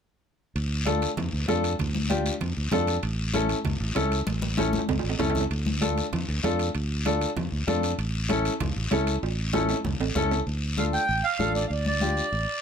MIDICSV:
0, 0, Header, 1, 5, 480
1, 0, Start_track
1, 0, Key_signature, -1, "minor"
1, 0, Tempo, 309757
1, 862, Time_signature, 4, 2, 24, 8
1, 19547, End_track
2, 0, Start_track
2, 0, Title_t, "Accordion"
2, 0, Program_c, 0, 21
2, 16701, Note_on_c, 0, 77, 74
2, 16808, Note_off_c, 0, 77, 0
2, 16939, Note_on_c, 0, 79, 97
2, 17416, Note_on_c, 0, 77, 85
2, 17433, Note_off_c, 0, 79, 0
2, 17864, Note_off_c, 0, 77, 0
2, 17897, Note_on_c, 0, 74, 79
2, 18065, Note_off_c, 0, 74, 0
2, 18087, Note_on_c, 0, 77, 70
2, 18143, Note_off_c, 0, 77, 0
2, 18155, Note_on_c, 0, 74, 68
2, 18370, Note_off_c, 0, 74, 0
2, 18394, Note_on_c, 0, 74, 85
2, 19547, Note_off_c, 0, 74, 0
2, 19547, End_track
3, 0, Start_track
3, 0, Title_t, "Upright piano"
3, 0, Program_c, 1, 0
3, 1323, Note_on_c, 1, 62, 71
3, 1335, Note_on_c, 1, 65, 69
3, 1338, Note_on_c, 1, 69, 87
3, 1668, Note_off_c, 1, 62, 0
3, 1673, Note_off_c, 1, 65, 0
3, 1675, Note_off_c, 1, 69, 0
3, 2291, Note_on_c, 1, 62, 84
3, 2296, Note_on_c, 1, 65, 71
3, 2301, Note_on_c, 1, 69, 90
3, 2631, Note_off_c, 1, 62, 0
3, 2634, Note_off_c, 1, 65, 0
3, 2636, Note_off_c, 1, 69, 0
3, 3245, Note_on_c, 1, 62, 77
3, 3254, Note_on_c, 1, 65, 72
3, 3254, Note_on_c, 1, 67, 88
3, 3588, Note_off_c, 1, 62, 0
3, 3592, Note_off_c, 1, 65, 0
3, 3592, Note_off_c, 1, 67, 0
3, 4211, Note_on_c, 1, 62, 80
3, 4219, Note_on_c, 1, 65, 70
3, 4223, Note_on_c, 1, 69, 95
3, 4551, Note_off_c, 1, 62, 0
3, 4554, Note_off_c, 1, 65, 0
3, 4557, Note_off_c, 1, 69, 0
3, 5168, Note_on_c, 1, 61, 75
3, 5173, Note_on_c, 1, 64, 72
3, 5181, Note_on_c, 1, 69, 85
3, 5509, Note_off_c, 1, 61, 0
3, 5511, Note_off_c, 1, 64, 0
3, 5515, Note_off_c, 1, 69, 0
3, 6119, Note_on_c, 1, 61, 78
3, 6128, Note_on_c, 1, 64, 73
3, 6135, Note_on_c, 1, 69, 89
3, 6464, Note_off_c, 1, 61, 0
3, 6469, Note_off_c, 1, 64, 0
3, 6472, Note_off_c, 1, 69, 0
3, 7085, Note_on_c, 1, 61, 81
3, 7093, Note_on_c, 1, 64, 73
3, 7096, Note_on_c, 1, 69, 74
3, 7427, Note_off_c, 1, 61, 0
3, 7431, Note_off_c, 1, 64, 0
3, 7433, Note_off_c, 1, 69, 0
3, 8042, Note_on_c, 1, 61, 78
3, 8048, Note_on_c, 1, 64, 73
3, 8054, Note_on_c, 1, 69, 93
3, 8386, Note_off_c, 1, 61, 0
3, 8389, Note_off_c, 1, 64, 0
3, 8392, Note_off_c, 1, 69, 0
3, 9002, Note_on_c, 1, 62, 68
3, 9008, Note_on_c, 1, 65, 66
3, 9012, Note_on_c, 1, 69, 76
3, 9345, Note_off_c, 1, 62, 0
3, 9348, Note_off_c, 1, 65, 0
3, 9350, Note_off_c, 1, 69, 0
3, 9969, Note_on_c, 1, 62, 77
3, 9974, Note_on_c, 1, 65, 78
3, 9983, Note_on_c, 1, 69, 88
3, 10309, Note_off_c, 1, 62, 0
3, 10312, Note_off_c, 1, 65, 0
3, 10316, Note_off_c, 1, 69, 0
3, 10934, Note_on_c, 1, 62, 80
3, 10937, Note_on_c, 1, 65, 72
3, 10946, Note_on_c, 1, 69, 76
3, 11272, Note_off_c, 1, 62, 0
3, 11273, Note_off_c, 1, 65, 0
3, 11277, Note_off_c, 1, 69, 0
3, 11889, Note_on_c, 1, 62, 84
3, 11893, Note_on_c, 1, 65, 70
3, 11897, Note_on_c, 1, 69, 92
3, 12229, Note_off_c, 1, 62, 0
3, 12231, Note_off_c, 1, 65, 0
3, 12233, Note_off_c, 1, 69, 0
3, 12843, Note_on_c, 1, 61, 81
3, 12848, Note_on_c, 1, 64, 69
3, 12859, Note_on_c, 1, 69, 89
3, 13186, Note_off_c, 1, 61, 0
3, 13189, Note_off_c, 1, 64, 0
3, 13194, Note_off_c, 1, 69, 0
3, 13803, Note_on_c, 1, 61, 80
3, 13812, Note_on_c, 1, 64, 76
3, 13822, Note_on_c, 1, 69, 88
3, 14146, Note_off_c, 1, 61, 0
3, 14150, Note_off_c, 1, 64, 0
3, 14155, Note_off_c, 1, 69, 0
3, 14770, Note_on_c, 1, 61, 77
3, 14770, Note_on_c, 1, 64, 73
3, 14779, Note_on_c, 1, 69, 87
3, 15110, Note_off_c, 1, 61, 0
3, 15110, Note_off_c, 1, 64, 0
3, 15114, Note_off_c, 1, 69, 0
3, 15730, Note_on_c, 1, 61, 84
3, 15735, Note_on_c, 1, 64, 71
3, 15745, Note_on_c, 1, 69, 97
3, 16070, Note_off_c, 1, 61, 0
3, 16072, Note_off_c, 1, 64, 0
3, 16077, Note_off_c, 1, 69, 0
3, 16695, Note_on_c, 1, 62, 62
3, 16703, Note_on_c, 1, 65, 63
3, 16707, Note_on_c, 1, 69, 68
3, 17032, Note_off_c, 1, 62, 0
3, 17037, Note_off_c, 1, 65, 0
3, 17039, Note_off_c, 1, 69, 0
3, 17646, Note_on_c, 1, 62, 67
3, 17657, Note_on_c, 1, 65, 63
3, 17663, Note_on_c, 1, 69, 76
3, 17988, Note_off_c, 1, 62, 0
3, 17994, Note_off_c, 1, 65, 0
3, 17997, Note_off_c, 1, 69, 0
3, 18609, Note_on_c, 1, 62, 63
3, 18615, Note_on_c, 1, 65, 63
3, 18622, Note_on_c, 1, 67, 75
3, 18951, Note_off_c, 1, 62, 0
3, 18953, Note_off_c, 1, 65, 0
3, 18957, Note_off_c, 1, 67, 0
3, 19547, End_track
4, 0, Start_track
4, 0, Title_t, "Fingered electric bass"
4, 0, Program_c, 2, 33
4, 860, Note_on_c, 2, 38, 88
4, 1628, Note_off_c, 2, 38, 0
4, 1822, Note_on_c, 2, 41, 81
4, 2013, Note_off_c, 2, 41, 0
4, 2061, Note_on_c, 2, 38, 83
4, 2253, Note_off_c, 2, 38, 0
4, 2306, Note_on_c, 2, 41, 81
4, 2687, Note_off_c, 2, 41, 0
4, 2786, Note_on_c, 2, 38, 96
4, 3551, Note_off_c, 2, 38, 0
4, 3739, Note_on_c, 2, 41, 79
4, 3931, Note_off_c, 2, 41, 0
4, 3983, Note_on_c, 2, 38, 74
4, 4173, Note_off_c, 2, 38, 0
4, 4217, Note_on_c, 2, 41, 82
4, 4602, Note_off_c, 2, 41, 0
4, 4696, Note_on_c, 2, 33, 92
4, 5464, Note_off_c, 2, 33, 0
4, 5657, Note_on_c, 2, 37, 75
4, 5849, Note_off_c, 2, 37, 0
4, 5895, Note_on_c, 2, 33, 84
4, 6088, Note_off_c, 2, 33, 0
4, 6140, Note_on_c, 2, 37, 88
4, 6523, Note_off_c, 2, 37, 0
4, 6612, Note_on_c, 2, 33, 89
4, 7382, Note_off_c, 2, 33, 0
4, 7576, Note_on_c, 2, 37, 76
4, 7769, Note_off_c, 2, 37, 0
4, 7811, Note_on_c, 2, 33, 81
4, 8006, Note_off_c, 2, 33, 0
4, 8056, Note_on_c, 2, 37, 82
4, 8441, Note_off_c, 2, 37, 0
4, 8533, Note_on_c, 2, 38, 92
4, 9303, Note_off_c, 2, 38, 0
4, 9497, Note_on_c, 2, 41, 85
4, 9689, Note_off_c, 2, 41, 0
4, 9739, Note_on_c, 2, 38, 85
4, 9930, Note_off_c, 2, 38, 0
4, 9976, Note_on_c, 2, 41, 86
4, 10360, Note_off_c, 2, 41, 0
4, 10458, Note_on_c, 2, 38, 96
4, 11225, Note_off_c, 2, 38, 0
4, 11417, Note_on_c, 2, 41, 87
4, 11609, Note_off_c, 2, 41, 0
4, 11655, Note_on_c, 2, 38, 90
4, 11847, Note_off_c, 2, 38, 0
4, 11892, Note_on_c, 2, 41, 79
4, 12278, Note_off_c, 2, 41, 0
4, 12371, Note_on_c, 2, 33, 94
4, 13141, Note_off_c, 2, 33, 0
4, 13335, Note_on_c, 2, 37, 84
4, 13527, Note_off_c, 2, 37, 0
4, 13580, Note_on_c, 2, 33, 77
4, 13771, Note_off_c, 2, 33, 0
4, 13818, Note_on_c, 2, 37, 92
4, 14202, Note_off_c, 2, 37, 0
4, 14300, Note_on_c, 2, 33, 97
4, 15067, Note_off_c, 2, 33, 0
4, 15259, Note_on_c, 2, 37, 84
4, 15450, Note_off_c, 2, 37, 0
4, 15493, Note_on_c, 2, 33, 74
4, 15687, Note_off_c, 2, 33, 0
4, 15733, Note_on_c, 2, 37, 88
4, 16119, Note_off_c, 2, 37, 0
4, 16218, Note_on_c, 2, 38, 82
4, 16986, Note_off_c, 2, 38, 0
4, 17184, Note_on_c, 2, 33, 87
4, 17374, Note_off_c, 2, 33, 0
4, 17655, Note_on_c, 2, 33, 90
4, 18041, Note_off_c, 2, 33, 0
4, 18133, Note_on_c, 2, 38, 85
4, 18904, Note_off_c, 2, 38, 0
4, 19096, Note_on_c, 2, 33, 85
4, 19290, Note_off_c, 2, 33, 0
4, 19547, End_track
5, 0, Start_track
5, 0, Title_t, "Drums"
5, 864, Note_on_c, 9, 74, 76
5, 866, Note_on_c, 9, 65, 58
5, 1019, Note_off_c, 9, 74, 0
5, 1021, Note_off_c, 9, 65, 0
5, 1339, Note_on_c, 9, 63, 76
5, 1343, Note_on_c, 9, 73, 62
5, 1345, Note_on_c, 9, 65, 66
5, 1494, Note_off_c, 9, 63, 0
5, 1498, Note_off_c, 9, 73, 0
5, 1500, Note_off_c, 9, 65, 0
5, 1581, Note_on_c, 9, 73, 68
5, 1587, Note_on_c, 9, 65, 61
5, 1736, Note_off_c, 9, 73, 0
5, 1742, Note_off_c, 9, 65, 0
5, 1817, Note_on_c, 9, 64, 78
5, 1824, Note_on_c, 9, 74, 59
5, 1829, Note_on_c, 9, 65, 59
5, 1972, Note_off_c, 9, 64, 0
5, 1979, Note_off_c, 9, 74, 0
5, 1984, Note_off_c, 9, 65, 0
5, 2298, Note_on_c, 9, 63, 81
5, 2302, Note_on_c, 9, 65, 70
5, 2302, Note_on_c, 9, 66, 75
5, 2303, Note_on_c, 9, 73, 60
5, 2453, Note_off_c, 9, 63, 0
5, 2457, Note_off_c, 9, 65, 0
5, 2457, Note_off_c, 9, 66, 0
5, 2458, Note_off_c, 9, 73, 0
5, 2543, Note_on_c, 9, 65, 62
5, 2545, Note_on_c, 9, 73, 62
5, 2698, Note_off_c, 9, 65, 0
5, 2700, Note_off_c, 9, 73, 0
5, 2777, Note_on_c, 9, 74, 76
5, 2779, Note_on_c, 9, 64, 65
5, 2786, Note_on_c, 9, 65, 65
5, 2932, Note_off_c, 9, 74, 0
5, 2934, Note_off_c, 9, 64, 0
5, 2941, Note_off_c, 9, 65, 0
5, 3019, Note_on_c, 9, 63, 65
5, 3174, Note_off_c, 9, 63, 0
5, 3251, Note_on_c, 9, 73, 65
5, 3254, Note_on_c, 9, 63, 83
5, 3264, Note_on_c, 9, 65, 63
5, 3406, Note_off_c, 9, 73, 0
5, 3409, Note_off_c, 9, 63, 0
5, 3419, Note_off_c, 9, 65, 0
5, 3497, Note_on_c, 9, 73, 67
5, 3505, Note_on_c, 9, 65, 58
5, 3652, Note_off_c, 9, 73, 0
5, 3660, Note_off_c, 9, 65, 0
5, 3732, Note_on_c, 9, 64, 70
5, 3737, Note_on_c, 9, 74, 64
5, 3738, Note_on_c, 9, 65, 61
5, 3887, Note_off_c, 9, 64, 0
5, 3892, Note_off_c, 9, 74, 0
5, 3893, Note_off_c, 9, 65, 0
5, 4209, Note_on_c, 9, 63, 78
5, 4209, Note_on_c, 9, 64, 68
5, 4217, Note_on_c, 9, 73, 55
5, 4221, Note_on_c, 9, 65, 72
5, 4221, Note_on_c, 9, 66, 74
5, 4364, Note_off_c, 9, 63, 0
5, 4364, Note_off_c, 9, 64, 0
5, 4372, Note_off_c, 9, 73, 0
5, 4376, Note_off_c, 9, 65, 0
5, 4376, Note_off_c, 9, 66, 0
5, 4453, Note_on_c, 9, 73, 65
5, 4465, Note_on_c, 9, 65, 60
5, 4608, Note_off_c, 9, 73, 0
5, 4620, Note_off_c, 9, 65, 0
5, 4691, Note_on_c, 9, 74, 69
5, 4697, Note_on_c, 9, 65, 69
5, 4846, Note_off_c, 9, 74, 0
5, 4851, Note_off_c, 9, 65, 0
5, 5168, Note_on_c, 9, 63, 77
5, 5168, Note_on_c, 9, 73, 66
5, 5178, Note_on_c, 9, 65, 62
5, 5323, Note_off_c, 9, 63, 0
5, 5323, Note_off_c, 9, 73, 0
5, 5333, Note_off_c, 9, 65, 0
5, 5414, Note_on_c, 9, 65, 56
5, 5414, Note_on_c, 9, 73, 66
5, 5568, Note_off_c, 9, 65, 0
5, 5569, Note_off_c, 9, 73, 0
5, 5651, Note_on_c, 9, 64, 75
5, 5652, Note_on_c, 9, 74, 66
5, 5660, Note_on_c, 9, 65, 60
5, 5806, Note_off_c, 9, 64, 0
5, 5807, Note_off_c, 9, 74, 0
5, 5815, Note_off_c, 9, 65, 0
5, 6133, Note_on_c, 9, 63, 79
5, 6135, Note_on_c, 9, 65, 77
5, 6135, Note_on_c, 9, 66, 70
5, 6137, Note_on_c, 9, 73, 65
5, 6288, Note_off_c, 9, 63, 0
5, 6290, Note_off_c, 9, 65, 0
5, 6290, Note_off_c, 9, 66, 0
5, 6292, Note_off_c, 9, 73, 0
5, 6380, Note_on_c, 9, 65, 62
5, 6385, Note_on_c, 9, 73, 67
5, 6535, Note_off_c, 9, 65, 0
5, 6539, Note_off_c, 9, 73, 0
5, 6612, Note_on_c, 9, 63, 74
5, 6621, Note_on_c, 9, 65, 64
5, 6626, Note_on_c, 9, 74, 71
5, 6767, Note_off_c, 9, 63, 0
5, 6776, Note_off_c, 9, 65, 0
5, 6781, Note_off_c, 9, 74, 0
5, 6851, Note_on_c, 9, 63, 75
5, 7006, Note_off_c, 9, 63, 0
5, 7090, Note_on_c, 9, 63, 78
5, 7097, Note_on_c, 9, 65, 80
5, 7099, Note_on_c, 9, 73, 69
5, 7245, Note_off_c, 9, 63, 0
5, 7252, Note_off_c, 9, 65, 0
5, 7254, Note_off_c, 9, 73, 0
5, 7329, Note_on_c, 9, 63, 92
5, 7338, Note_on_c, 9, 73, 63
5, 7414, Note_on_c, 9, 65, 61
5, 7484, Note_off_c, 9, 63, 0
5, 7493, Note_off_c, 9, 73, 0
5, 7569, Note_off_c, 9, 65, 0
5, 7572, Note_on_c, 9, 64, 67
5, 7575, Note_on_c, 9, 66, 80
5, 7577, Note_on_c, 9, 74, 61
5, 7727, Note_off_c, 9, 64, 0
5, 7730, Note_off_c, 9, 66, 0
5, 7732, Note_off_c, 9, 74, 0
5, 7736, Note_on_c, 9, 65, 73
5, 7891, Note_off_c, 9, 65, 0
5, 7893, Note_on_c, 9, 66, 74
5, 8048, Note_off_c, 9, 66, 0
5, 8048, Note_on_c, 9, 66, 94
5, 8055, Note_on_c, 9, 64, 66
5, 8059, Note_on_c, 9, 73, 64
5, 8203, Note_off_c, 9, 66, 0
5, 8210, Note_off_c, 9, 64, 0
5, 8211, Note_on_c, 9, 66, 82
5, 8214, Note_off_c, 9, 73, 0
5, 8291, Note_on_c, 9, 64, 67
5, 8302, Note_on_c, 9, 73, 65
5, 8366, Note_off_c, 9, 66, 0
5, 8378, Note_on_c, 9, 66, 61
5, 8446, Note_off_c, 9, 64, 0
5, 8457, Note_off_c, 9, 73, 0
5, 8533, Note_off_c, 9, 66, 0
5, 8537, Note_on_c, 9, 65, 62
5, 8542, Note_on_c, 9, 74, 75
5, 8692, Note_off_c, 9, 65, 0
5, 8697, Note_off_c, 9, 74, 0
5, 8774, Note_on_c, 9, 63, 71
5, 8929, Note_off_c, 9, 63, 0
5, 9016, Note_on_c, 9, 63, 72
5, 9017, Note_on_c, 9, 65, 67
5, 9019, Note_on_c, 9, 73, 69
5, 9171, Note_off_c, 9, 63, 0
5, 9172, Note_off_c, 9, 65, 0
5, 9174, Note_off_c, 9, 73, 0
5, 9259, Note_on_c, 9, 73, 64
5, 9261, Note_on_c, 9, 65, 51
5, 9414, Note_off_c, 9, 73, 0
5, 9416, Note_off_c, 9, 65, 0
5, 9494, Note_on_c, 9, 64, 78
5, 9500, Note_on_c, 9, 65, 59
5, 9500, Note_on_c, 9, 74, 65
5, 9649, Note_off_c, 9, 64, 0
5, 9654, Note_off_c, 9, 74, 0
5, 9655, Note_off_c, 9, 65, 0
5, 9980, Note_on_c, 9, 63, 70
5, 9984, Note_on_c, 9, 65, 69
5, 9984, Note_on_c, 9, 66, 75
5, 9987, Note_on_c, 9, 73, 61
5, 10135, Note_off_c, 9, 63, 0
5, 10139, Note_off_c, 9, 65, 0
5, 10139, Note_off_c, 9, 66, 0
5, 10142, Note_off_c, 9, 73, 0
5, 10218, Note_on_c, 9, 65, 60
5, 10225, Note_on_c, 9, 73, 67
5, 10373, Note_off_c, 9, 65, 0
5, 10380, Note_off_c, 9, 73, 0
5, 10454, Note_on_c, 9, 65, 69
5, 10467, Note_on_c, 9, 74, 67
5, 10609, Note_off_c, 9, 65, 0
5, 10622, Note_off_c, 9, 74, 0
5, 10936, Note_on_c, 9, 63, 76
5, 10938, Note_on_c, 9, 65, 71
5, 10942, Note_on_c, 9, 73, 63
5, 11091, Note_off_c, 9, 63, 0
5, 11093, Note_off_c, 9, 65, 0
5, 11097, Note_off_c, 9, 73, 0
5, 11179, Note_on_c, 9, 65, 57
5, 11181, Note_on_c, 9, 73, 61
5, 11334, Note_off_c, 9, 65, 0
5, 11336, Note_off_c, 9, 73, 0
5, 11414, Note_on_c, 9, 64, 77
5, 11418, Note_on_c, 9, 74, 58
5, 11424, Note_on_c, 9, 65, 54
5, 11569, Note_off_c, 9, 64, 0
5, 11573, Note_off_c, 9, 74, 0
5, 11579, Note_off_c, 9, 65, 0
5, 11898, Note_on_c, 9, 73, 62
5, 11900, Note_on_c, 9, 63, 80
5, 11901, Note_on_c, 9, 65, 67
5, 12053, Note_off_c, 9, 73, 0
5, 12055, Note_off_c, 9, 63, 0
5, 12056, Note_off_c, 9, 65, 0
5, 12138, Note_on_c, 9, 73, 69
5, 12147, Note_on_c, 9, 65, 63
5, 12293, Note_off_c, 9, 73, 0
5, 12302, Note_off_c, 9, 65, 0
5, 12375, Note_on_c, 9, 74, 75
5, 12378, Note_on_c, 9, 65, 68
5, 12530, Note_off_c, 9, 74, 0
5, 12533, Note_off_c, 9, 65, 0
5, 12854, Note_on_c, 9, 63, 83
5, 12856, Note_on_c, 9, 65, 75
5, 12862, Note_on_c, 9, 73, 65
5, 13009, Note_off_c, 9, 63, 0
5, 13011, Note_off_c, 9, 65, 0
5, 13017, Note_off_c, 9, 73, 0
5, 13098, Note_on_c, 9, 73, 67
5, 13102, Note_on_c, 9, 65, 58
5, 13253, Note_off_c, 9, 73, 0
5, 13257, Note_off_c, 9, 65, 0
5, 13333, Note_on_c, 9, 65, 66
5, 13336, Note_on_c, 9, 64, 84
5, 13341, Note_on_c, 9, 74, 72
5, 13488, Note_off_c, 9, 65, 0
5, 13491, Note_off_c, 9, 64, 0
5, 13496, Note_off_c, 9, 74, 0
5, 13812, Note_on_c, 9, 63, 78
5, 13816, Note_on_c, 9, 65, 72
5, 13816, Note_on_c, 9, 66, 77
5, 13820, Note_on_c, 9, 73, 64
5, 13967, Note_off_c, 9, 63, 0
5, 13971, Note_off_c, 9, 65, 0
5, 13971, Note_off_c, 9, 66, 0
5, 13975, Note_off_c, 9, 73, 0
5, 14056, Note_on_c, 9, 65, 69
5, 14058, Note_on_c, 9, 73, 62
5, 14210, Note_off_c, 9, 65, 0
5, 14213, Note_off_c, 9, 73, 0
5, 14303, Note_on_c, 9, 74, 65
5, 14305, Note_on_c, 9, 65, 68
5, 14457, Note_off_c, 9, 74, 0
5, 14460, Note_off_c, 9, 65, 0
5, 14773, Note_on_c, 9, 73, 66
5, 14777, Note_on_c, 9, 63, 83
5, 14777, Note_on_c, 9, 65, 82
5, 14928, Note_off_c, 9, 73, 0
5, 14931, Note_off_c, 9, 63, 0
5, 14932, Note_off_c, 9, 65, 0
5, 15012, Note_on_c, 9, 73, 64
5, 15018, Note_on_c, 9, 66, 76
5, 15167, Note_off_c, 9, 73, 0
5, 15173, Note_off_c, 9, 66, 0
5, 15255, Note_on_c, 9, 74, 64
5, 15258, Note_on_c, 9, 64, 79
5, 15410, Note_off_c, 9, 74, 0
5, 15413, Note_off_c, 9, 64, 0
5, 15503, Note_on_c, 9, 66, 72
5, 15658, Note_off_c, 9, 66, 0
5, 15734, Note_on_c, 9, 73, 67
5, 15741, Note_on_c, 9, 63, 78
5, 15741, Note_on_c, 9, 64, 74
5, 15889, Note_off_c, 9, 73, 0
5, 15896, Note_off_c, 9, 63, 0
5, 15896, Note_off_c, 9, 64, 0
5, 15982, Note_on_c, 9, 66, 70
5, 15984, Note_on_c, 9, 73, 62
5, 16137, Note_off_c, 9, 66, 0
5, 16139, Note_off_c, 9, 73, 0
5, 16221, Note_on_c, 9, 74, 72
5, 16376, Note_off_c, 9, 74, 0
5, 16698, Note_on_c, 9, 63, 75
5, 16702, Note_on_c, 9, 73, 64
5, 16853, Note_off_c, 9, 63, 0
5, 16857, Note_off_c, 9, 73, 0
5, 16942, Note_on_c, 9, 73, 64
5, 17097, Note_off_c, 9, 73, 0
5, 17180, Note_on_c, 9, 74, 62
5, 17335, Note_off_c, 9, 74, 0
5, 17656, Note_on_c, 9, 63, 79
5, 17662, Note_on_c, 9, 73, 61
5, 17811, Note_off_c, 9, 63, 0
5, 17817, Note_off_c, 9, 73, 0
5, 17901, Note_on_c, 9, 73, 61
5, 18056, Note_off_c, 9, 73, 0
5, 18143, Note_on_c, 9, 74, 71
5, 18298, Note_off_c, 9, 74, 0
5, 18375, Note_on_c, 9, 63, 61
5, 18530, Note_off_c, 9, 63, 0
5, 18611, Note_on_c, 9, 63, 70
5, 18620, Note_on_c, 9, 73, 66
5, 18766, Note_off_c, 9, 63, 0
5, 18775, Note_off_c, 9, 73, 0
5, 18859, Note_on_c, 9, 73, 61
5, 19014, Note_off_c, 9, 73, 0
5, 19102, Note_on_c, 9, 74, 67
5, 19257, Note_off_c, 9, 74, 0
5, 19547, End_track
0, 0, End_of_file